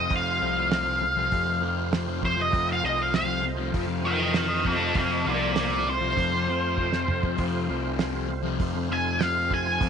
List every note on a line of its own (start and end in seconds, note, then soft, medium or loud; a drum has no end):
0.00 0.12 F3 medium
0.00 9.89 A3 medium
0.00 9.89 C4 medium
0.00 9.89 F4 medium
0.00 9.89 C5 medium
0.00 0.12 D#5 loud
0.09 0.40 F2 medium
0.09 0.39 F2 loud
0.09 0.40 C3 medium
0.09 0.43 F3 loud
0.09 kick medium
0.09 open hi-hat medium
0.16 1.91 F5 medium
0.40 1.28 C2 medium
0.40 1.01 F2 medium
0.40 0.87 C3 medium
0.40 0.85 F3 medium
0.71 snare loud
0.71 open hi-hat medium
0.86 1.01 C3 medium
0.86 1.02 F3 medium
1.01 muted distorted electric guitar stroke soft
1.16 1.31 C3 medium
1.16 1.32 F3 medium
1.31 1.61 F2 medium
1.31 2.49 F2 loud
1.31 1.48 C3 loud
1.31 1.46 F3 loud
1.31 kick medium
1.31 open hi-hat soft
1.47 1.61 C3 medium
1.47 1.64 F3 medium
1.61 1.91 F2 medium
1.61 1.92 C3 medium
1.61 1.94 F3 medium
1.92 2.21 F2 loud
1.92 2.08 C3 loud
1.92 2.06 F3 loud
1.92 snare loud
1.92 open hi-hat medium
2.06 2.22 C3 medium
2.06 2.24 F3 medium
2.22 2.50 F2 medium
2.22 2.37 C3 medium
2.22 2.35 F3 medium
2.22 2.38 C5 loud
2.22 kick medium
2.36 2.51 C3 medium
2.36 2.53 F3 medium
2.41 2.69 D#5 medium
2.50 2.80 F2 loud
2.50 2.81 F2 loud
2.50 2.81 C3 loud
2.50 2.83 F3 loud
2.50 kick loud
2.50 open hi-hat medium
2.72 2.85 F5 medium
2.81 3.70 C2 medium
2.81 3.42 F2 medium
2.81 3.27 C3 medium
2.81 3.25 F3 medium
2.86 3.02 D#5 medium
3.02 3.14 F5 medium
3.14 3.44 F5 loud
3.14 snare loud
3.14 open hi-hat medium
3.25 3.41 C3 medium
3.25 3.43 F3 medium
3.43 muted distorted electric guitar stroke soft
3.57 3.72 C3 medium
3.57 3.74 F3 medium
3.72 4.03 F2 loud
3.72 4.92 F2 medium
3.72 3.88 C3 loud
3.72 3.87 F3 loud
3.72 kick medium
3.72 open hi-hat medium
3.87 4.04 C3 medium
3.87 4.06 F3 medium
4.03 4.33 F2 medium
4.03 4.34 C3 medium
4.03 4.35 F3 medium
4.03 4.35 D#5 medium
4.03 4.35 G5 loud
4.33 4.62 F2 medium
4.33 4.49 C3 medium
4.33 4.48 F3 loud
4.33 4.64 D#5 medium
4.33 4.65 G5 medium
4.33 snare loud
4.33 open hi-hat medium
4.48 4.63 C3 medium
4.48 4.65 F3 medium
4.63 4.92 F2 medium
4.63 4.80 C3 medium
4.63 4.78 F3 medium
4.63 kick medium
4.67 4.94 A4 medium
4.67 4.96 F5 medium
4.78 4.93 C3 medium
4.78 4.95 F3 medium
4.93 5.24 F2 loud
4.93 5.24 C3 loud
4.93 5.27 F3 loud
4.93 kick loud
4.93 open hi-hat medium
4.97 5.25 A4 medium
4.97 5.26 F5 medium
5.24 6.13 C2 medium
5.24 5.85 F2 medium
5.24 5.72 C3 medium
5.24 5.70 F3 medium
5.28 5.55 F4 medium
5.28 5.57 D5 medium
5.56 snare loud
5.56 open hi-hat medium
5.60 5.86 F4 medium
5.60 5.87 D5 medium
5.70 5.85 C3 medium
5.70 5.86 F3 medium
5.86 7.66 C5 loud
5.86 muted distorted electric guitar stroke soft
6.01 6.16 C3 medium
6.01 6.17 F3 medium
6.15 6.46 F2 medium
6.15 7.34 F2 medium
6.15 6.33 C3 medium
6.15 6.32 F3 loud
6.15 kick medium
6.15 open hi-hat medium
6.32 6.47 C3 medium
6.32 6.49 F3 medium
6.47 6.77 F2 medium
6.47 6.77 C3 medium
6.47 6.79 F3 medium
6.77 7.07 F2 medium
6.77 6.94 C3 medium
6.77 6.92 F3 loud
6.77 kick medium
6.92 7.07 C3 medium
6.92 7.09 F3 medium
6.92 snare medium
7.07 7.37 F2 medium
7.07 7.25 C3 medium
7.07 7.23 F3 medium
7.07 mid tom medium
7.23 7.37 C3 medium
7.23 7.38 F3 medium
7.23 kick medium
7.37 7.67 F2 medium
7.37 7.67 F2 loud
7.37 7.68 C3 loud
7.37 7.69 F3 loud
7.37 kick loud
7.37 open hi-hat medium
7.67 8.56 C2 loud
7.67 8.28 F2 medium
7.67 8.14 C3 medium
7.67 8.12 F3 medium
7.99 snare loud
7.99 open hi-hat medium
8.12 8.28 C3 medium
8.12 8.29 F3 medium
8.29 muted distorted electric guitar stroke soft
8.43 8.59 C3 medium
8.43 8.61 F3 medium
8.59 8.89 F2 medium
8.59 9.77 F2 medium
8.59 8.75 C3 loud
8.59 8.72 F3 loud
8.59 kick medium
8.59 open hi-hat medium
8.73 8.90 C3 medium
8.73 8.91 F3 medium
8.89 9.19 F2 medium
8.89 9.20 C3 medium
8.89 9.22 F3 medium
8.89 9.23 G#5 medium
9.20 9.50 F2 medium
9.20 9.37 C3 loud
9.20 9.35 F3 medium
9.20 9.51 F5 loud
9.20 snare loud
9.20 open hi-hat medium
9.35 9.50 C3 medium
9.35 9.53 F3 medium
9.50 9.80 F2 medium
9.50 9.67 C3 medium
9.50 9.65 F3 medium
9.50 9.89 G#5 medium
9.50 kick medium
9.66 9.80 C3 medium
9.66 9.82 F3 medium
9.80 9.89 F2 loud
9.80 9.89 C3 loud
9.80 9.89 F3 loud
9.80 kick loud
9.80 open hi-hat medium